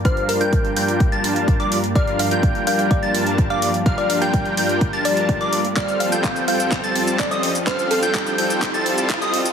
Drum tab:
HH |xxoxxxoxxxoxxxox|xxoxxxoxxxoxxxox|xxoxxxoxxxoxxxox|xxoxxxoxxxoxxxox|
SH |----------------|----------------|----------------|xx-xxx-xxx-xxx-x|
CP |----------------|----------------|----------------|x---x---x---x---|
BD |o---o---o---o---|o---o---o---o---|o---o---o---o---|o---o---o---o---|

HH |xxoxxxoxxxoxxxox|
SH |xx-xxx-xxx-xxx-x|
CP |x---x---x---x---|
BD |o---o---o---o---|